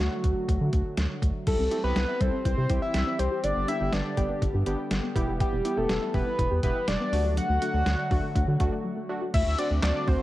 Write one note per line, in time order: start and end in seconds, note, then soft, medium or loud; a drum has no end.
0.00 1.43 D3 medium
0.00 1.45 F#3 medium
0.00 1.45 A3 medium
0.00 0.98 F#4 medium
0.00 1.45 F#4 medium
0.24 0.33 D2 loud
0.24 kick medium
0.24 closed hi-hat medium
0.48 0.58 D2 loud
0.48 kick medium
0.48 closed hi-hat medium
0.61 0.70 D3 medium
0.73 0.82 D2 loud
0.73 kick medium
0.73 closed hi-hat medium
0.97 1.07 D2 loud
0.97 snare medium
0.97 closed hi-hat medium
1.22 1.31 D2 loud
1.22 kick medium
1.22 closed hi-hat medium
1.47 1.56 C2 loud
1.47 3.42 E3 medium
1.47 1.54 G3 medium
1.47 7.09 G3 medium
1.47 3.42 C4 medium
1.47 7.09 G4 medium
1.47 1.81 A4 medium
1.47 kick loud
1.47 closed hi-hat medium
1.47 crash medium
1.59 1.68 C2 medium
1.59 1.66 C4 medium
1.71 1.78 C4 medium
1.71 1.78 E4 medium
1.71 1.78 G4 medium
1.71 closed hi-hat medium
1.84 1.93 C2 loud
1.84 1.98 C4 medium
1.84 1.98 E4 medium
1.84 1.91 G4 medium
1.84 1.98 G4 medium
1.84 2.22 B4 medium
1.96 2.05 C2 medium
1.96 snare loud
1.96 closed hi-hat medium
2.08 2.15 E5 medium
2.21 2.30 C2 loud
2.21 2.28 G3 medium
2.21 2.35 C4 medium
2.21 2.35 E4 medium
2.21 2.35 A4 medium
2.21 2.45 C5 medium
2.21 kick medium
2.21 closed hi-hat medium
2.33 2.40 C4 medium
2.45 2.54 C2 loud
2.45 2.52 E4 medium
2.45 2.80 C5 loud
2.45 kick loud
2.45 closed hi-hat medium
2.58 2.67 C3 medium
2.58 2.65 G4 loud
2.70 2.79 C2 loud
2.70 2.84 C4 medium
2.70 2.84 E4 medium
2.70 2.84 G4 medium
2.70 2.77 C5 medium
2.70 kick medium
2.70 closed hi-hat medium
2.82 3.21 E5 loud
2.82 2.89 E5 medium
2.94 3.04 C2 loud
2.94 3.02 G3 medium
2.94 snare loud
2.94 closed hi-hat medium
3.07 3.14 C4 medium
3.19 3.28 C2 loud
3.19 3.33 C4 medium
3.19 3.33 E4 medium
3.19 3.33 G4 medium
3.19 3.45 C5 loud
3.19 closed hi-hat medium
3.32 3.38 G4 loud
3.44 3.53 G1 loud
3.44 5.14 D3 medium
3.44 3.51 G3 medium
3.44 7.09 B3 medium
3.44 3.68 D5 loud
3.44 closed hi-hat medium
3.56 3.65 G1 medium
3.56 3.63 B3 medium
3.68 3.75 B3 medium
3.68 3.75 D4 medium
3.68 3.75 G4 medium
3.68 3.95 E5 loud
3.68 closed hi-hat medium
3.80 3.90 G1 loud
3.80 3.94 B3 medium
3.80 3.94 D4 medium
3.80 3.87 G4 medium
3.80 3.94 G4 medium
3.93 4.02 G1 loud
3.93 4.00 B4 medium
3.93 4.42 D5 medium
3.93 snare loud
3.93 closed hi-hat medium
4.05 4.12 D5 medium
4.17 4.27 G1 loud
4.17 4.24 G3 medium
4.17 4.31 B3 medium
4.17 4.31 D4 medium
4.17 4.31 G4 medium
4.17 kick medium
4.17 closed hi-hat medium
4.30 4.37 B3 medium
4.42 4.51 G1 loud
4.42 4.49 D4 medium
4.42 kick medium
4.42 closed hi-hat medium
4.54 4.63 G2 medium
4.54 4.61 G4 loud
4.66 4.76 G1 medium
4.66 4.80 B3 medium
4.66 4.80 D4 medium
4.66 4.80 G4 medium
4.66 4.74 B4 medium
4.66 closed hi-hat medium
4.79 4.86 D5 medium
4.91 5.00 G1 loud
4.91 4.98 G3 medium
4.91 snare loud
4.91 closed hi-hat medium
5.03 5.10 B3 medium
5.16 5.43 E1 loud
5.16 7.11 E3 medium
5.16 5.55 B3 medium
5.16 5.55 E4 medium
5.16 5.55 G4 loud
5.16 kick loud
5.16 closed hi-hat medium
5.28 5.35 G4 loud
5.40 5.47 G3 medium
5.40 5.79 G4 medium
5.40 kick loud
5.40 closed hi-hat medium
5.53 5.62 E1 loud
5.53 5.60 B3 medium
5.65 5.72 B3 medium
5.65 5.72 E4 medium
5.65 5.72 G4 medium
5.65 closed hi-hat medium
5.77 5.87 E1 medium
5.77 5.91 B3 medium
5.77 5.91 E4 medium
5.77 5.91 G4 medium
5.77 5.84 G4 medium
5.77 6.14 A4 loud
5.89 5.99 E1 loud
5.89 5.96 B4 medium
5.89 snare loud
5.89 closed hi-hat medium
6.02 6.09 E5 medium
6.14 6.23 E1 loud
6.14 6.21 G3 medium
6.14 6.28 B3 medium
6.14 6.28 E4 medium
6.14 6.28 G4 medium
6.14 6.60 B4 medium
6.14 kick medium
6.14 open hi-hat soft
6.26 6.33 B3 medium
6.39 6.48 E1 loud
6.39 6.46 E4 medium
6.39 kick loud
6.39 closed hi-hat medium
6.51 6.60 E2 loud
6.51 6.58 G4 loud
6.63 6.72 E1 loud
6.63 6.77 B3 medium
6.63 6.77 E4 medium
6.63 6.77 G4 medium
6.63 6.70 B4 medium
6.63 6.86 B4 medium
6.63 kick medium
6.63 closed hi-hat medium
6.76 6.83 E5 medium
6.88 6.97 E1 loud
6.88 6.95 G3 medium
6.88 7.34 D5 loud
6.88 snare loud
6.88 closed hi-hat medium
7.00 7.07 B3 medium
7.12 7.40 D2 medium
7.12 9.31 D3 medium
7.12 9.31 F#3 medium
7.12 9.31 A3 medium
7.12 7.52 A3 medium
7.12 7.52 D4 medium
7.12 9.31 F#4 medium
7.12 7.52 F#4 medium
7.12 open hi-hat medium
7.25 7.32 F#4 loud
7.37 7.44 F#3 medium
7.37 8.81 F#5 loud
7.37 closed hi-hat medium
7.49 7.59 D2 loud
7.49 7.56 A3 medium
7.62 7.69 A3 medium
7.62 7.69 D4 medium
7.62 7.69 F#4 medium
7.62 closed hi-hat medium
7.74 7.83 D2 loud
7.74 7.88 A3 medium
7.74 7.88 D4 medium
7.74 7.81 F#4 medium
7.74 7.88 F#4 medium
7.86 7.95 D2 loud
7.86 7.93 A4 medium
7.86 snare loud
7.86 closed hi-hat medium
7.99 8.06 D5 medium
8.11 8.20 D2 loud
8.11 8.18 F#3 medium
8.11 8.25 A3 medium
8.11 8.25 D4 medium
8.11 8.25 F#4 loud
8.11 kick medium
8.11 open hi-hat medium
8.23 8.30 A3 medium
8.35 8.45 D2 loud
8.35 8.42 D4 medium
8.35 kick loud
8.35 closed hi-hat medium
8.48 8.57 D3 loud
8.48 8.55 F#4 loud
8.60 8.69 D2 loud
8.60 8.74 A3 medium
8.60 8.74 D4 medium
8.60 8.74 F#4 loud
8.60 8.67 A4 medium
8.60 kick medium
8.60 closed hi-hat medium
8.72 8.79 D5 medium
8.84 8.91 F#3 medium
8.97 9.04 A3 medium
9.09 9.23 A3 medium
9.09 9.23 D4 medium
9.09 9.23 F#4 medium
9.21 9.28 F#4 loud
9.34 9.43 D2 loud
9.34 10.22 D3 medium
9.34 10.22 A3 medium
9.34 10.22 C4 medium
9.34 10.22 F#4 medium
9.34 9.57 E5 loud
9.34 kick loud
9.34 closed hi-hat medium
9.34 crash loud
9.46 9.55 D2 medium
9.58 9.72 C4 medium
9.58 9.72 D4 medium
9.58 9.72 F#4 medium
9.58 9.70 D5 loud
9.58 closed hi-hat medium
9.71 9.80 D2 loud
9.83 9.92 D2 loud
9.83 10.10 D5 loud
9.83 snare loud
9.83 clap medium
9.83 closed hi-hat medium
10.08 10.17 D2 loud
10.08 10.22 C4 medium
10.08 10.22 D4 medium
10.08 10.22 F#4 medium
10.08 10.22 C5 medium
10.08 kick medium
10.08 open hi-hat medium